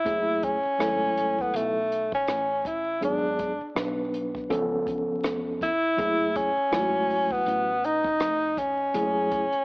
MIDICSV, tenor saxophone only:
0, 0, Header, 1, 2, 480
1, 0, Start_track
1, 0, Tempo, 740741
1, 37, Time_signature, 4, 2, 24, 8
1, 6251, End_track
2, 0, Start_track
2, 0, Title_t, "Tenor saxophone"
2, 0, Program_c, 0, 66
2, 0, Note_on_c, 0, 64, 111
2, 287, Note_on_c, 0, 61, 97
2, 297, Note_off_c, 0, 64, 0
2, 916, Note_on_c, 0, 59, 87
2, 926, Note_off_c, 0, 61, 0
2, 1010, Note_on_c, 0, 57, 94
2, 1020, Note_off_c, 0, 59, 0
2, 1382, Note_off_c, 0, 57, 0
2, 1390, Note_on_c, 0, 61, 89
2, 1731, Note_on_c, 0, 64, 84
2, 1741, Note_off_c, 0, 61, 0
2, 1964, Note_off_c, 0, 64, 0
2, 1973, Note_on_c, 0, 62, 93
2, 2419, Note_off_c, 0, 62, 0
2, 3647, Note_on_c, 0, 64, 113
2, 4125, Note_on_c, 0, 61, 106
2, 4135, Note_off_c, 0, 64, 0
2, 4745, Note_on_c, 0, 59, 102
2, 4754, Note_off_c, 0, 61, 0
2, 5088, Note_on_c, 0, 63, 99
2, 5097, Note_off_c, 0, 59, 0
2, 5563, Note_on_c, 0, 61, 92
2, 5573, Note_off_c, 0, 63, 0
2, 6251, Note_off_c, 0, 61, 0
2, 6251, End_track
0, 0, End_of_file